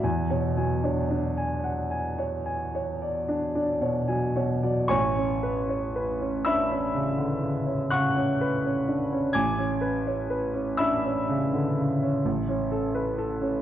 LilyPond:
\new Staff \with { instrumentName = "Grand piano" } { \time 9/8 \key a \major \tempo 4. = 40 << { gis''16 cis''16 gis''16 cis''16 d'16 gis''16 fis''16 gis''16 cis''16 gis''16 cis''16 d''16 d'16 d''16 cis''16 gis''16 cis''16 d''16 | <cis'' gis'' cis'''>4. <e'' b'' e'''>4. <fis'' cis''' fis'''>4. | <gis'' d''' gis'''>4. <e'' b'' e'''>2~ <e'' b'' e'''>8 r8 | } \\ { e,16 b,16 fis16 d'8 r2 d'16 b,16 fis16 b,16 fis16 | a,,16 cis'16 b'16 cis''16 b'16 cis'16 d'16 cis'16 cis16 d16 cis16 cis'16 cis16 cis'16 b'16 cis'16 d'16 cis'16 | a,,16 cis'16 b'16 cis''16 b'16 cis'16 d'16 cis'16 cis16 d16 cis16 cis'16 a,,16 cis'16 a'16 b'16 a'16 cis'16 | } >> }